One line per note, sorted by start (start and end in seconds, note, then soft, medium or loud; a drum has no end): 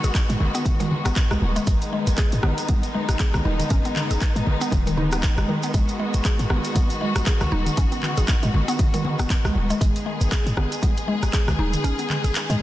0.00 0.10 G#1 loud
0.00 12.62 D#3 medium
0.00 12.62 G#3 medium
0.00 12.62 B3 medium
0.00 1.66 F#4 medium
0.00 0.10 G#4 medium
0.04 closed hi-hat soft
0.04 shaker medium
0.15 kick loud
0.15 clap loud
0.15 closed hi-hat medium
0.15 shaker medium
0.29 0.36 G#2 medium
0.29 0.39 G#3 medium
0.29 closed hi-hat soft
0.29 shaker soft
0.40 0.49 G#1 medium
0.40 low conga loud
0.55 0.64 B3 loud
0.55 closed hi-hat soft
0.55 shaker medium
0.65 kick loud
0.65 closed hi-hat medium
0.65 low conga medium
0.65 shaker medium
0.80 0.90 D#3 loud
0.80 closed hi-hat soft
0.80 high conga medium
0.80 shaker soft
0.91 mid tom medium
0.91 low conga medium
1.05 1.12 G#1 medium
1.05 1.15 B3 loud
1.05 cross-stick loud
1.05 closed hi-hat soft
1.05 shaker medium
1.16 kick loud
1.16 clap loud
1.16 closed hi-hat medium
1.16 shaker medium
1.31 1.37 B1 medium
1.31 1.41 G#3 medium
1.31 cross-stick loud
1.31 high conga medium
1.31 shaker soft
1.42 1.59 D#1 loud
1.42 high conga loud
1.56 1.66 G#3 loud
1.56 closed hi-hat soft
1.56 shaker medium
1.67 1.76 G#1 loud
1.67 1.81 G#3 medium
1.67 5.73 D#4 medium
1.67 kick loud
1.67 closed hi-hat medium
1.67 shaker medium
1.82 closed hi-hat soft
1.82 shaker soft
1.93 2.07 G#3 medium
2.07 2.14 G#1 loud
2.07 closed hi-hat soft
2.07 shaker medium
2.18 2.32 G#4 loud
2.18 kick loud
2.18 clap loud
2.18 closed hi-hat medium
2.18 shaker medium
2.32 2.39 G#2 medium
2.32 closed hi-hat soft
2.32 shaker soft
2.43 2.52 G#1 medium
2.43 2.57 B3 medium
2.43 cross-stick loud
2.43 low conga loud
2.58 closed hi-hat soft
2.58 shaker medium
2.69 2.77 B3 medium
2.69 kick loud
2.69 closed hi-hat medium
2.69 high conga medium
2.69 shaker medium
2.83 closed hi-hat soft
2.83 shaker soft
2.94 3.08 G#3 medium
2.94 high conga medium
3.09 3.15 G#1 medium
3.09 cross-stick loud
3.09 closed hi-hat soft
3.09 shaker medium
3.19 3.34 G#4 loud
3.19 kick loud
3.19 clap loud
3.19 closed hi-hat medium
3.19 shaker medium
3.34 3.41 B1 medium
3.34 cross-stick loud
3.34 high conga medium
3.34 low conga loud
3.34 shaker soft
3.45 3.62 D#1 loud
3.45 3.53 D#4 medium
3.45 high conga loud
3.60 closed hi-hat soft
3.60 mid tom medium
3.60 shaker medium
3.70 3.79 G#1 loud
3.70 3.79 C#4 loud
3.70 kick loud
3.70 closed hi-hat medium
3.70 shaker medium
3.85 3.95 B3 medium
3.85 closed hi-hat soft
3.85 shaker soft
3.96 clap medium
3.96 mid tom medium
4.11 4.17 G#1 loud
4.11 4.17 G#4 medium
4.11 closed hi-hat soft
4.11 shaker medium
4.21 kick loud
4.21 clap loud
4.21 closed hi-hat medium
4.21 shaker medium
4.35 4.42 G#2 medium
4.35 4.46 G#3 medium
4.35 closed hi-hat soft
4.35 shaker soft
4.47 4.56 G#1 medium
4.47 low conga loud
4.61 4.71 B3 loud
4.61 closed hi-hat soft
4.61 shaker medium
4.71 5.28 D#1 loud
4.71 kick loud
4.71 closed hi-hat medium
4.71 low conga loud
4.71 shaker medium
4.86 4.97 D#3 loud
4.86 closed hi-hat soft
4.86 high conga medium
4.86 shaker soft
4.97 5.11 D#4 medium
4.97 mid tom medium
4.97 low conga medium
5.12 5.18 B3 medium
5.12 cross-stick loud
5.12 closed hi-hat soft
5.12 shaker medium
5.23 kick loud
5.23 clap loud
5.23 closed hi-hat medium
5.23 shaker medium
5.37 5.44 F#1 loud
5.37 5.47 G#3 medium
5.37 cross-stick loud
5.37 high conga medium
5.37 shaker soft
5.49 5.57 D#3 medium
5.49 high conga medium
5.63 5.73 B3 medium
5.63 closed hi-hat soft
5.63 shaker medium
5.74 5.83 G#1 loud
5.74 5.88 G#3 medium
5.74 kick loud
5.74 closed hi-hat medium
5.74 shaker medium
5.88 closed hi-hat soft
5.88 shaker soft
5.99 6.13 G#3 medium
6.14 6.21 G#1 loud
6.14 closed hi-hat soft
6.14 shaker medium
6.24 6.39 G#4 loud
6.24 kick loud
6.24 clap loud
6.24 closed hi-hat medium
6.24 shaker medium
6.39 6.46 G#2 medium
6.39 closed hi-hat soft
6.39 shaker soft
6.50 6.59 G#1 medium
6.50 6.64 B3 medium
6.50 cross-stick medium
6.50 low conga medium
6.64 closed hi-hat soft
6.64 shaker medium
6.75 6.84 B3 medium
6.75 kick loud
6.75 closed hi-hat medium
6.75 high conga medium
6.75 shaker medium
6.90 closed hi-hat soft
6.90 shaker soft
7.01 7.15 G#3 medium
7.01 high conga medium
7.16 7.22 G#1 medium
7.16 cross-stick loud
7.16 closed hi-hat soft
7.16 shaker medium
7.26 7.40 G#4 loud
7.26 kick loud
7.26 clap loud
7.26 closed hi-hat medium
7.26 shaker medium
7.40 7.48 B1 medium
7.40 cross-stick medium
7.40 high conga medium
7.40 low conga loud
7.40 shaker soft
7.52 7.69 D#1 loud
7.52 7.60 D#4 loud
7.52 high conga loud
7.66 closed hi-hat soft
7.66 mid tom medium
7.66 shaker medium
7.77 7.86 G#1 loud
7.77 7.85 C#4 loud
7.77 kick loud
7.77 closed hi-hat medium
7.77 shaker medium
7.92 8.02 B3 medium
7.92 closed hi-hat soft
7.92 shaker soft
8.03 clap medium
8.03 mid tom medium
8.17 8.24 G#1 loud
8.17 8.23 G#4 medium
8.17 closed hi-hat soft
8.17 shaker medium
8.28 kick loud
8.28 clap loud
8.28 closed hi-hat medium
8.28 shaker medium
8.43 8.49 G#2 medium
8.43 8.53 G#3 medium
8.43 closed hi-hat soft
8.43 shaker soft
8.54 8.63 G#1 medium
8.54 low conga loud
8.68 8.78 B3 loud
8.68 closed hi-hat soft
8.68 shaker medium
8.79 kick loud
8.79 closed hi-hat medium
8.79 low conga loud
8.79 shaker medium
8.94 9.03 D#3 loud
8.94 closed hi-hat soft
8.94 high conga medium
8.94 shaker soft
9.05 mid tom medium
9.05 low conga medium
9.19 9.26 G#1 medium
9.19 9.29 B3 loud
9.19 cross-stick medium
9.19 closed hi-hat soft
9.19 shaker medium
9.30 kick loud
9.30 clap loud
9.30 closed hi-hat medium
9.30 shaker medium
9.45 9.51 B1 medium
9.45 9.54 G#3 medium
9.45 cross-stick medium
9.45 high conga medium
9.45 shaker soft
9.55 9.72 D#1 loud
9.55 high conga medium
9.70 9.80 G#3 loud
9.70 closed hi-hat soft
9.70 shaker medium
9.80 9.90 G#1 loud
9.80 9.95 G#3 medium
9.80 12.62 G#4 medium
9.80 kick loud
9.80 closed hi-hat medium
9.80 shaker medium
9.96 closed hi-hat soft
9.96 shaker soft
10.06 10.20 G#3 medium
10.21 10.27 G#1 loud
10.21 closed hi-hat soft
10.21 shaker medium
10.32 10.46 G#4 loud
10.32 kick loud
10.32 clap loud
10.32 closed hi-hat medium
10.32 shaker medium
10.46 10.53 G#2 medium
10.46 closed hi-hat soft
10.46 shaker soft
10.57 10.66 G#1 medium
10.57 10.71 B3 medium
10.57 cross-stick medium
10.57 low conga loud
10.72 closed hi-hat soft
10.72 shaker medium
10.82 10.90 B3 medium
10.82 kick loud
10.82 closed hi-hat medium
10.82 high conga medium
10.82 shaker medium
10.97 closed hi-hat soft
10.97 shaker soft
11.07 11.22 G#3 medium
11.07 high conga medium
11.23 11.29 G#1 medium
11.23 cross-stick medium
11.23 closed hi-hat soft
11.23 shaker medium
11.33 11.47 G#4 loud
11.33 kick loud
11.33 clap loud
11.33 closed hi-hat medium
11.33 shaker medium
11.48 11.54 B1 medium
11.48 cross-stick medium
11.48 high conga medium
11.48 low conga loud
11.48 shaker soft
11.58 11.75 D#1 loud
11.58 11.67 D#4 loud
11.58 high conga medium
11.73 closed hi-hat soft
11.73 mid tom medium
11.73 shaker medium
11.84 11.93 G#1 loud
11.84 11.92 C#4 loud
11.84 closed hi-hat medium
11.84 shaker medium
11.98 12.09 B3 medium
11.98 closed hi-hat soft
11.98 shaker soft
12.10 clap medium
12.10 mid tom medium
12.24 12.31 G#1 loud
12.24 12.30 G#4 medium
12.24 closed hi-hat soft
12.24 shaker medium
12.35 clap loud
12.35 closed hi-hat medium
12.35 shaker medium
12.49 12.56 G#2 medium
12.49 12.59 G#3 medium
12.49 closed hi-hat soft
12.49 shaker soft